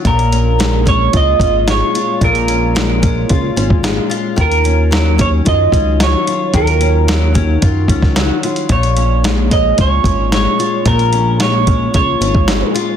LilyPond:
<<
  \new Staff \with { instrumentName = "Clean electric guitar" } { \time 4/4 \key bes \minor \tempo 4 = 111 bes'4. des''8 ees''4 des''4 | bes'2.~ bes'8 r8 | bes'4. des''8 ees''4 des''4 | bes'2.~ bes'8 r8 |
des''4. ees''8 des''4 des''4 | bes'4 des''4 des''4. r8 | }
  \new Staff \with { instrumentName = "Steel-string acoustic guitar" } { \time 4/4 \key bes \minor bes,8 des'8 aes8 des'8 f'8 des'8 aes8 f'8 | bes,8 des'8 aes8 des'8 f'8 des'8 aes8 f'8 | ees8 des'8 ges8 des'8 f'8 des'8 ges8 f'8 | ees8 des'8 ges8 des'8 f'8 des'8 ges8 f'8 |
bes,8 des'8 aes8 des'8 f'8 des'8 aes8 f'8 | bes,8 des'8 aes8 des'8 f'8 des'8 aes8 f'8 | }
  \new Staff \with { instrumentName = "Analog synth bass" } { \clef bass \time 4/4 \key bes \minor bes,,2 des,8 aes,,4 r8 | bes,,2 des,8 aes,,4 r8 | ees,2 ges,8 des,4 r8 | ees,2 ges,8 des,4 r8 |
bes,,2 des,8 aes,,4 r8 | bes,,2 des,8 aes,,4 r8 | }
  \new DrumStaff \with { instrumentName = "Drums" } \drummode { \time 4/4 <hh bd>16 hh16 hh8 <hh sn>8 <hh bd>8 <hh bd>8 <hh bd>8 <hh sn>8 hh8 | <hh bd>16 hh16 hh8 <hh sn>8 <hh bd>8 <hh bd>8 hh16 bd16 <hh sn>8 hh8 | <hh bd>16 hh16 hh8 <hh sn>8 <hh bd>8 <hh bd>8 <hh bd>8 <hh sn>8 hh8 | <hh bd>16 hh16 hh8 <hh sn>8 <hh bd>8 <hh bd>8 <hh bd>16 <bd sn>16 <hh sn>8 hh16 hh16 |
<hh bd>16 hh16 hh8 <hh sn>8 <hh bd>8 <hh bd>8 <hh bd>8 <hh sn>8 hh8 | <hh bd>16 hh16 hh8 <hh sn>8 <hh bd>8 <hh bd>8 hh16 bd16 <hh sn>8 hh8 | }
>>